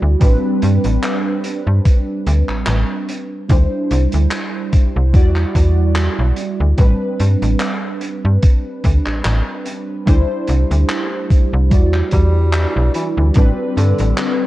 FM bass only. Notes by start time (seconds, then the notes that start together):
0.02 D2
0.21 A1
0.63 G2
0.85 A1
1.67 G2
2.27 D2
2.49 A1
2.68 A1
3.50 D2
3.91 C2
4.14 D2
4.96 C2
5.14 E2
5.55 E2
6.19 B1
6.60 D2
6.79 A1
7.20 G2
7.42 A1
8.25 G2
8.84 D2
9.06 A1
9.25 A1
10.07 D2
10.49 C2
10.71 D2
11.53 C2
11.72 E2
12.13 E2
12.76 B1
13.17 D2
13.36 A1
13.77 G2
14.00 A1